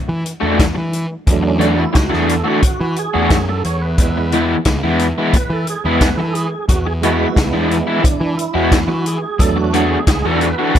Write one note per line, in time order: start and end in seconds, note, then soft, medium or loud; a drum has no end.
0.09 0.23 E3 medium
0.26 closed hi-hat medium
0.40 0.71 E2 loud
0.40 0.64 E3 medium
0.40 0.64 A3 medium
0.40 0.64 D4 medium
0.40 0.64 F#4 medium
0.59 kick loud
0.59 snare loud
0.59 closed hi-hat loud
0.75 1.05 E3 medium
0.75 muted overdriven electric guitar stroke soft
0.93 closed hi-hat medium
1.27 1.83 E2 loud
1.27 1.74 F#3 medium
1.27 1.62 D4 medium
1.27 kick loud
1.27 closed hi-hat medium
1.32 1.75 A3 soft
1.43 muted overdriven electric guitar stroke soft
1.48 1.64 C#4 medium
1.59 1.82 E3 medium
1.59 1.83 A3 medium
1.59 1.83 D4 medium
1.59 1.83 F#4 medium
1.59 closed hi-hat medium
1.64 1.80 D4 medium
1.79 1.96 E4 medium
1.93 2.09 C#2 loud
1.93 muted overdriven electric guitar stroke soft
1.93 kick loud
1.93 snare loud
1.93 closed hi-hat medium
1.99 2.14 F#4 medium
2.09 2.41 E2 medium
2.09 2.33 E3 medium
2.09 2.33 A3 medium
2.09 2.33 D4 medium
2.09 2.33 F#4 medium
2.09 snare soft
2.14 2.29 G#4 medium
2.29 2.48 A4 medium
2.29 closed hi-hat medium
2.44 2.60 E3 medium
2.44 2.61 A3 medium
2.44 2.61 D4 medium
2.44 2.61 F#4 medium
2.44 2.99 F#4 loud
2.62 muted overdriven electric guitar stroke soft
2.62 kick loud
2.62 closed hi-hat medium
2.81 2.94 E3 medium
2.96 3.45 G#4 medium
2.96 closed hi-hat medium
3.14 3.28 E2 medium
3.14 3.36 E3 medium
3.14 3.36 A3 medium
3.14 3.36 D4 medium
3.14 3.36 F#4 medium
3.30 3.61 F#2 medium
3.30 kick loud
3.30 snare loud
3.30 closed hi-hat medium
3.48 3.64 A4 medium
3.48 muted overdriven electric guitar stroke soft
3.64 3.95 E2 medium
3.64 3.82 C#5 loud
3.64 closed hi-hat medium
3.82 4.45 B4 medium
3.98 4.54 E2 loud
3.98 4.43 G#3 medium
3.98 4.45 B3 soft
3.98 4.45 E4 medium
3.98 kick loud
3.98 closed hi-hat loud
4.17 muted overdriven electric guitar stroke medium
4.32 4.55 E3 medium
4.32 4.55 G#3 medium
4.32 4.55 B3 medium
4.32 4.55 E4 medium
4.32 closed hi-hat medium
4.65 4.80 C#2 loud
4.65 muted overdriven electric guitar stroke soft
4.65 kick loud
4.65 snare loud
4.65 closed hi-hat medium
4.83 5.11 E2 medium
4.83 5.06 E3 medium
4.83 5.06 G#3 medium
4.83 5.06 B3 medium
4.83 5.05 E4 medium
4.99 closed hi-hat medium
5.18 5.35 E3 medium
5.18 5.35 G#3 medium
5.18 5.34 B3 medium
5.18 5.34 E4 medium
5.33 5.52 B4 loud
5.33 muted overdriven electric guitar stroke soft
5.33 kick loud
5.33 closed hi-hat medium
5.50 5.64 E3 medium
5.50 5.68 A4 medium
5.67 6.00 G#4 medium
5.67 closed hi-hat medium
5.85 6.13 E2 loud
5.85 6.08 E3 medium
5.85 6.08 G#3 medium
5.85 6.08 B3 medium
5.85 6.07 E4 medium
6.01 6.17 B4 medium
6.01 kick loud
6.01 snare loud
6.01 closed hi-hat medium
6.17 6.46 E3 medium
6.17 6.35 A4 medium
6.17 muted overdriven electric guitar stroke medium
6.33 6.66 G#4 medium
6.33 closed hi-hat medium
6.68 7.25 E2 medium
6.68 6.87 F#4 medium
6.68 kick loud
6.68 closed hi-hat medium
6.85 6.93 G#4 medium
6.85 muted overdriven electric guitar stroke soft
7.02 7.25 E3 medium
7.02 8.00 G#3 medium
7.02 7.26 G#3 medium
7.02 8.00 B3 soft
7.02 7.26 B3 medium
7.02 7.36 E4 medium
7.02 7.26 E4 medium
7.02 7.38 F#4 medium
7.02 closed hi-hat medium
7.36 7.51 C#2 loud
7.36 7.55 E4 medium
7.36 muted overdriven electric guitar stroke medium
7.36 kick loud
7.36 snare loud
7.36 closed hi-hat medium
7.52 7.81 E2 medium
7.52 7.76 E3 medium
7.52 7.76 G#3 medium
7.52 7.76 B3 medium
7.52 7.69 D4 medium
7.52 7.75 E4 medium
7.71 8.06 E4 medium
7.71 closed hi-hat medium
7.87 8.01 E3 medium
7.87 8.02 G#3 medium
7.87 8.02 B3 medium
7.87 8.03 E4 medium
8.03 8.35 D4 medium
8.03 muted overdriven electric guitar stroke soft
8.03 kick loud
8.03 closed hi-hat medium
8.21 8.35 E3 medium
8.37 8.54 E4 medium
8.37 closed hi-hat medium
8.54 8.83 E2 medium
8.54 8.77 E3 medium
8.54 8.77 G#3 medium
8.54 8.77 B3 medium
8.54 8.77 E4 medium
8.54 8.73 F#4 medium
8.71 8.89 E4 medium
8.71 kick loud
8.71 snare loud
8.71 closed hi-hat loud
8.88 9.16 E3 medium
8.88 9.06 F#4 medium
8.88 muted overdriven electric guitar stroke medium
9.06 9.42 G#4 medium
9.06 closed hi-hat medium
9.39 9.96 E2 loud
9.39 9.85 F#3 soft
9.39 9.85 A3 soft
9.39 9.86 D4 medium
9.39 9.58 A4 medium
9.39 kick loud
9.39 closed hi-hat medium
9.56 9.73 F#4 medium
9.56 muted overdriven electric guitar stroke soft
9.74 9.96 E3 medium
9.74 9.97 A3 medium
9.74 9.97 D4 medium
9.74 9.97 F#4 medium
9.74 10.28 G#4 medium
9.74 closed hi-hat medium
10.07 10.21 C#2 loud
10.07 muted overdriven electric guitar stroke soft
10.07 kick loud
10.07 snare loud
10.07 closed hi-hat loud
10.24 10.53 E2 medium
10.24 10.48 E3 medium
10.24 10.48 A3 medium
10.24 10.48 D4 medium
10.24 10.47 F#4 medium
10.24 10.41 A4 medium
10.41 10.79 B4 loud
10.41 closed hi-hat medium
10.59 10.75 E3 medium
10.59 10.75 A3 medium
10.59 10.76 D4 medium
10.59 10.76 F#4 medium
10.75 10.79 F#3 soft
10.75 kick loud
10.75 closed hi-hat medium